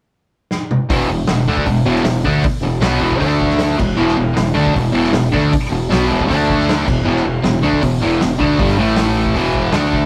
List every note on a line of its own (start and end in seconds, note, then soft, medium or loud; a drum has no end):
0.51 snare medium
0.71 mid tom medium
0.89 1.07 E1 medium
0.89 1.08 E2 medium
0.89 1.08 B2 loud
0.89 1.09 E3 loud
0.89 kick loud
0.89 open hi-hat medium
1.00 snare soft
1.09 1.27 E1 medium
1.09 1.25 E2 medium
1.09 1.24 B2 medium
1.27 1.46 E1 medium
1.27 1.43 E2 medium
1.27 1.44 B2 medium
1.27 snare loud
1.27 open hi-hat medium
1.47 1.65 D2 medium
1.47 1.66 D3 loud
1.47 1.67 A3 loud
1.47 1.67 D4 loud
1.57 kick medium
1.66 1.84 E1 medium
1.66 1.82 E2 medium
1.66 1.82 B2 medium
1.66 kick medium
1.66 open hi-hat medium
1.85 2.03 E1 medium
1.85 2.04 E2 medium
1.85 2.04 B2 medium
1.85 2.05 E3 medium
1.96 snare soft
2.03 2.22 E1 medium
2.03 2.20 E2 medium
2.03 2.21 B2 medium
2.03 snare loud
2.03 open hi-hat medium
2.24 2.43 D2 medium
2.24 2.43 D3 loud
2.24 2.44 A3 medium
2.24 2.44 D4 loud
2.24 kick medium
2.44 muted fingered electric bass stroke soft
2.44 muted distorted electric guitar stroke medium
2.44 kick loud
2.44 open hi-hat medium
2.60 2.79 E1 medium
2.60 2.78 E2 medium
2.60 2.79 B2 medium
2.79 2.99 B1 medium
2.79 3.00 B2 loud
2.79 3.01 F#3 loud
2.79 3.01 B3 loud
2.79 snare loud
2.79 open hi-hat medium
3.00 3.19 E1 medium
3.00 3.20 E2 medium
3.00 3.19 B2 loud
3.00 3.20 E3 loud
3.12 kick medium
3.19 3.75 D2 medium
3.19 3.77 D3 medium
3.19 3.78 A3 medium
3.19 3.78 D4 loud
3.19 kick medium
3.19 open hi-hat medium
3.41 kick medium
3.50 snare soft
3.59 snare loud
3.59 open hi-hat medium
3.78 3.97 E1 medium
3.78 3.94 E2 medium
3.78 3.94 B2 medium
3.78 kick loud
3.78 crash medium
3.96 4.17 E1 medium
3.96 4.16 E2 loud
3.96 4.15 B2 loud
3.96 4.16 E3 loud
4.08 snare soft
4.17 4.35 E1 medium
4.17 4.32 E2 medium
4.17 4.32 B2 medium
4.33 4.55 E1 medium
4.33 4.50 E2 medium
4.33 4.51 B2 medium
4.33 snare loud
4.33 open hi-hat medium
4.54 4.73 D2 loud
4.54 4.73 D3 medium
4.54 4.74 A3 loud
4.54 4.74 D4 loud
4.67 kick medium
4.74 4.93 E1 medium
4.74 4.90 E2 medium
4.74 4.90 B2 medium
4.74 kick loud
4.74 open hi-hat medium
4.92 5.12 E1 medium
4.92 5.11 E2 loud
4.92 5.11 B2 loud
4.92 5.13 E3 loud
5.04 snare soft
5.12 5.31 E1 medium
5.12 5.28 E2 medium
5.12 5.28 B2 medium
5.12 snare loud
5.12 open hi-hat medium
5.32 5.52 D2 loud
5.32 5.51 D3 medium
5.32 5.51 A3 medium
5.32 5.52 D4 loud
5.32 kick medium
5.51 muted distorted electric guitar stroke medium
5.51 muted fingered electric bass stroke soft
5.51 kick loud
5.51 open hi-hat medium
5.64 snare soft
5.69 5.89 E1 medium
5.69 5.86 E2 medium
5.69 5.86 B2 medium
5.90 6.09 B1 medium
5.90 6.06 B2 loud
5.90 6.08 F#3 loud
5.90 6.09 B3 loud
5.90 snare loud
5.90 open hi-hat medium
6.07 6.27 E2 loud
6.07 6.27 B2 medium
6.07 6.28 E3 loud
6.11 6.28 E1 loud
6.21 kick medium
6.27 6.85 D3 medium
6.27 6.85 A3 loud
6.27 6.86 D4 loud
6.27 kick medium
6.27 open hi-hat medium
6.31 6.84 D2 medium
6.50 kick medium
6.60 snare soft
6.69 snare loud
6.69 open hi-hat soft
6.86 7.05 E1 medium
6.86 7.02 E2 medium
6.86 7.02 B2 medium
6.86 kick loud
6.86 crash medium
7.05 7.23 E1 loud
7.05 7.23 E2 medium
7.05 7.24 B2 loud
7.05 7.25 E3 loud
7.16 snare soft
7.25 7.42 E1 medium
7.25 7.40 E2 medium
7.25 7.40 B2 medium
7.43 7.61 E1 medium
7.43 7.59 E2 medium
7.43 7.59 B2 medium
7.43 snare loud
7.43 open hi-hat medium
7.63 7.81 D2 loud
7.63 7.82 D3 medium
7.63 7.82 A3 medium
7.63 7.82 D4 loud
7.73 kick medium
7.82 8.01 E1 medium
7.82 7.97 E2 medium
7.82 7.98 B2 medium
7.82 kick medium
7.82 open hi-hat medium
8.01 8.21 E1 medium
8.01 8.20 E2 loud
8.01 8.20 B2 loud
8.01 8.21 E3 loud
8.21 8.40 E1 medium
8.21 8.36 E2 medium
8.21 8.36 B2 medium
8.21 snare loud
8.21 open hi-hat medium
8.39 8.58 D2 medium
8.39 8.58 D3 medium
8.39 8.59 A3 loud
8.39 8.59 D4 loud
8.39 kick medium
8.59 8.77 G1 loud
8.59 8.78 G2 loud
8.59 8.77 D3 loud
8.59 8.78 G3 loud
8.59 kick loud
8.59 open hi-hat medium
8.69 snare soft
8.78 9.32 A1 medium
8.78 9.35 A2 medium
8.78 9.34 E3 loud
8.78 9.36 A3 medium
8.96 snare loud
8.96 open hi-hat medium
9.26 kick medium
9.34 9.71 E1 medium
9.34 9.73 E2 medium
9.34 9.72 B2 loud
9.34 9.73 E3 loud
9.34 kick medium
9.34 open hi-hat medium
9.55 kick medium
9.73 10.06 D2 loud
9.73 10.06 D3 loud
9.73 10.06 A3 loud
9.73 10.06 D4 loud
9.73 snare loud
9.73 open hi-hat medium
9.93 kick medium